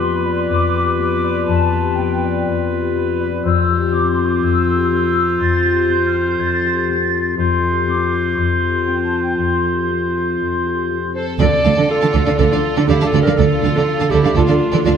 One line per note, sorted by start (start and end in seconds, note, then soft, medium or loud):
0.00 0.49 F2 medium
0.00 0.97 B3 soft
0.00 3.28 F4 medium
0.00 0.73 G4 soft
0.00 3.40 B4 soft
0.00 0.24 D5 soft
0.00 0.16 C6 medium
0.17 0.33 B5 medium
0.26 1.23 D5 soft
0.33 0.39 C6 medium
0.49 1.47 F2 soft
0.49 0.96 D6 medium
0.74 1.72 G4 soft
0.97 1.97 B3 soft
0.97 1.46 D6 medium
1.24 2.22 D5 soft
1.47 2.46 F2 medium
1.47 1.95 A5 medium
1.73 2.70 G4 soft
1.97 2.95 B3 soft
1.97 2.45 G5 medium
2.23 3.19 D5 soft
2.47 3.44 F2 soft
2.72 3.68 G4 soft
2.96 3.46 B3 soft
3.20 3.46 D5 soft
3.44 4.42 F2 medium
3.44 7.34 F4 medium
3.44 7.22 C5 soft
3.44 3.90 E6 medium
3.70 4.66 G4 soft
3.93 4.90 C4 soft
3.93 4.09 D6 medium
4.10 4.26 C6 medium
4.18 5.14 A4 soft
4.26 4.42 D6 medium
4.42 5.39 F2 soft
4.42 4.90 E6 medium
4.68 5.64 G4 soft
4.91 5.88 C4 soft
4.91 5.39 E6 medium
5.16 6.13 A4 soft
5.40 6.38 F2 medium
5.40 5.88 A6 medium
5.65 6.63 G4 soft
5.89 6.88 C4 soft
5.89 6.06 G6 medium
6.08 6.14 F6 medium
6.14 7.12 A4 soft
6.24 6.39 G6 medium
6.39 7.37 F2 soft
6.39 6.87 A6 medium
6.64 7.62 G4 soft
6.89 7.87 C4 soft
6.89 7.37 A6 medium
7.14 8.11 A4 soft
7.38 8.36 F2 soft
7.38 10.98 F4 medium
7.38 11.12 C5 soft
7.38 7.87 C6 medium
7.63 8.61 G4 soft
7.87 8.86 C4 soft
7.87 8.36 D6 medium
8.12 9.12 A4 soft
8.36 9.37 F2 soft
8.36 8.87 C6 medium
8.62 9.63 G4 soft
8.86 9.89 C4 soft
8.86 9.03 G5 soft
9.04 9.20 A5 soft
9.13 10.14 A4 soft
9.21 9.38 G5 soft
9.37 10.39 F2 soft
9.37 11.11 C6 soft
9.65 10.64 G4 soft
9.90 10.89 C4 soft
10.15 11.15 A4 soft
10.40 11.43 F2 soft
10.65 11.42 G4 soft
10.91 11.42 C4 soft
11.15 11.39 A4 soft
11.15 11.73 A4 soft
11.15 11.26 C5 soft
11.39 11.45 D2 medium
11.39 11.45 D3 medium
11.39 13.38 D3 medium
11.39 11.45 D4 medium
11.39 11.44 A4 medium
11.39 11.89 A4 medium
11.39 11.46 A4 medium
11.39 11.45 D5 medium
11.39 11.90 D5 medium
11.58 12.55 D4 soft
11.65 11.70 D2 soft
11.65 11.70 D3 soft
11.65 11.70 D4 soft
11.65 11.71 A4 soft
11.65 11.70 F5 soft
11.65 11.70 A5 soft
11.75 11.83 D3 medium
11.75 11.83 D4 medium
11.75 12.23 A4 soft
11.75 11.82 A4 soft
11.75 11.83 A4 medium
11.75 11.81 D5 soft
11.90 12.38 F4 medium
11.90 12.38 A4 medium
11.90 12.88 F5 soft
12.01 12.07 D3 soft
12.01 12.07 D4 soft
12.01 12.07 A4 soft
12.01 12.06 F5 soft
12.01 12.07 A5 soft
12.08 13.05 D5 soft
12.14 12.20 D2 medium
12.14 12.19 D3 medium
12.14 12.19 D4 medium
12.14 12.19 A4 medium
12.14 12.19 D5 medium
12.24 12.31 D3 soft
12.24 12.31 D4 soft
12.24 12.72 A4 soft
12.24 12.31 A4 soft
12.24 12.31 D5 soft
12.24 12.31 F5 soft
12.39 12.44 D2 medium
12.39 12.44 D3 medium
12.39 14.37 A3 soft
12.39 12.45 D4 medium
12.39 12.88 F4 medium
12.39 12.44 A4 medium
12.39 12.87 A4 medium
12.39 12.45 A4 medium
12.39 12.44 D5 medium
12.51 12.57 D3 soft
12.51 12.56 D4 soft
12.51 12.56 A4 soft
12.51 12.57 D5 soft
12.51 12.58 F5 soft
12.57 13.54 D4 soft
12.73 12.82 D3 medium
12.73 12.81 D4 medium
12.73 13.21 A4 soft
12.73 12.81 A4 medium
12.73 12.82 A4 medium
12.73 12.81 D5 medium
12.88 12.94 D2 soft
12.88 12.94 D3 soft
12.88 12.93 D4 soft
12.88 13.05 E4 medium
12.88 13.05 G4 medium
12.88 12.93 A4 soft
12.88 12.94 D5 soft
12.88 13.87 F5 soft
12.88 12.94 F5 soft
13.00 13.06 D3 soft
13.00 13.06 D4 soft
13.00 13.06 A4 medium
13.00 13.05 F5 medium
13.00 13.06 A5 medium
13.06 13.22 F4 medium
13.06 13.22 A4 medium
13.06 14.03 D5 soft
13.13 13.19 D2 medium
13.13 13.19 D3 medium
13.13 13.18 D4 medium
13.13 13.18 A4 medium
13.13 13.19 A4 medium
13.13 13.18 D5 soft
13.22 13.31 D4 soft
13.22 13.29 G4 medium
13.22 13.70 A4 soft
13.22 13.31 A4 soft
13.22 13.39 A#4 medium
13.26 13.31 D3 soft
13.26 13.32 D5 soft
13.26 13.31 F5 soft
13.38 13.43 D2 medium
13.38 14.97 D3 medium
13.38 13.44 D3 medium
13.38 13.43 D4 medium
13.38 14.10 F4 medium
13.38 14.12 A4 medium
13.38 13.43 A4 medium
13.38 13.43 D5 medium
13.55 14.53 D4 soft
13.62 13.68 D2 soft
13.62 13.69 D3 soft
13.62 13.67 D4 soft
13.62 13.67 A4 soft
13.62 13.69 F5 soft
13.62 13.69 A5 soft
13.75 13.80 D3 medium
13.75 13.80 D4 medium
13.75 13.80 A4 medium
13.75 13.81 A4 medium
13.75 13.82 D5 medium
13.88 14.86 F5 soft
13.99 14.05 D3 soft
13.99 14.04 D4 soft
13.99 14.04 A4 soft
13.99 14.05 F5 soft
13.99 14.05 A5 soft
14.04 14.97 D5 soft
14.10 14.17 D2 medium
14.10 14.17 D3 medium
14.10 14.17 D4 medium
14.10 14.36 E4 medium
14.10 14.36 G4 medium
14.10 14.17 A4 medium
14.10 14.16 D5 medium
14.21 14.29 D3 soft
14.21 14.29 D4 soft
14.21 14.70 A4 soft
14.21 14.29 A4 soft
14.21 14.30 D5 soft
14.21 14.29 F5 soft
14.36 14.41 D2 medium
14.36 14.42 D3 medium
14.36 14.97 A3 soft
14.36 14.85 D4 medium
14.36 14.42 D4 medium
14.36 14.84 F4 medium
14.36 14.41 A4 medium
14.36 14.42 A4 medium
14.36 14.41 D5 medium
14.47 14.53 D3 soft
14.47 14.54 D4 soft
14.47 14.54 A4 soft
14.47 14.53 D5 soft
14.47 14.53 F5 soft
14.54 14.97 D4 soft
14.71 14.78 D3 medium
14.71 14.79 D4 medium
14.71 14.97 A4 soft
14.71 14.78 A4 medium
14.71 14.79 A4 medium
14.71 14.78 D5 medium
14.85 14.91 D2 soft
14.85 14.91 D3 soft
14.85 14.91 D4 soft
14.85 14.94 D4 medium
14.85 14.97 F4 medium
14.85 14.91 A4 soft
14.85 14.91 D5 soft
14.85 14.91 F5 soft
14.85 14.97 F5 soft